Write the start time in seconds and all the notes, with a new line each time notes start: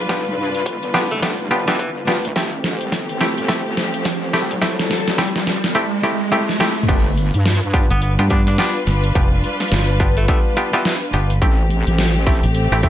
Already playing: B1 G3 D4 F4 B4, riser
0.09 B3 D4 F4 G4, kick, snare, closed hi-hat
0.26 B1
0.38 G2
0.55 closed hi-hat
0.66 G1, kick, closed hi-hat
0.83 closed hi-hat
0.94 B3 D4 F4 G4, snare
1.11 F1 A3, closed hi-hat
1.22 A3 B3 D4 F4 G4, kick, snare, closed hi-hat
1.51 G1 B3 D4 F4 G4
1.67 E3 B3 D4 F4 G4, snare, closed hi-hat
1.79 E3, kick, closed hi-hat
2.07 D2 B3 D4 F4 G4, snare
2.25 closed hi-hat
2.35 A1 A3 C4 E4 G4, kick, snare, closed hi-hat
2.64 snare
2.81 C2, closed hi-hat
2.92 G1, kick, snare, closed hi-hat
3.09 closed hi-hat
3.21 A3 C4 E4 G4, snare
3.38 G1, closed hi-hat
3.48 A3 C4 E4 G4, kick, snare, closed hi-hat
3.77 A1, snare
3.94 closed hi-hat
4.05 kick, snare, closed hi-hat
4.33 C2 A3 C4 E4 G4, snare
4.51 closed hi-hat
4.62 A3 C4 E4 G4 A4, kick, snare, closed hi-hat
4.79 C2, snare, closed hi-hat
4.91 A1, snare
5.08 snare, closed hi-hat
5.18 A1 A3 C4 E4 G4, kick, snare, closed hi-hat
5.27 closed hi-hat
5.36 snare
5.47 snare
5.64 G1, snare, closed hi-hat
5.75 A3 C4 E4 G4
6.03 A3 C4 E4 G4
6.32 A3 C4 E4 G4
6.49 snare
6.60 A3 C4 E4 G4, snare
6.83 mid tom
6.88 G1 G3 B3 D4 F4 G4 B4, kick, closed hi-hat, crash
7.18 closed hi-hat
7.34 G2, closed hi-hat
7.46 snare, closed hi-hat
7.73 B3 D4 F4 G4, kick, open hi-hat
7.90 G1 B3, closed hi-hat
8.02 B3, closed hi-hat
8.19 G2 B3 D4 F4 G4
8.30 B3 D4 F4 G4, kick, closed hi-hat
8.47 D4, snare, closed hi-hat
8.58 B3 D4 F4 G4, snare, closed hi-hat
8.87 G1, snare, open hi-hat
9.04 closed hi-hat
9.15 F1 B3 D4 F4 G4, kick, closed hi-hat
9.44 closed hi-hat
9.60 snare, closed hi-hat
9.62 closed hi-hat
9.68 snare, closed hi-hat
9.72 G1, closed hi-hat
10.00 B3 D4 F4 G4, kick, open hi-hat
10.17 A3, closed hi-hat
10.28 A3 B3 D4 F4 G4, kick, closed hi-hat
10.57 B3 D4 F4 G4, closed hi-hat
10.73 E3 B3 D4 F4 G4, closed hi-hat
10.85 E3, snare, closed hi-hat
11.13 G1 B3 D4 F4 G4, open hi-hat
11.30 closed hi-hat
11.42 A1 A3 C4 E4 G4, kick, closed hi-hat
11.70 closed hi-hat
11.87 A1, closed hi-hat
11.99 snare, closed hi-hat
12.27 A3 C4 E4 G4, kick, open hi-hat
12.29 open hi-hat
12.32 open hi-hat
12.35 open hi-hat
12.40 A1, closed hi-hat, open hi-hat
12.55 closed hi-hat
12.72 A1 A3 C4 E4 G4
12.83 A3 C4 E4 G4, kick, closed hi-hat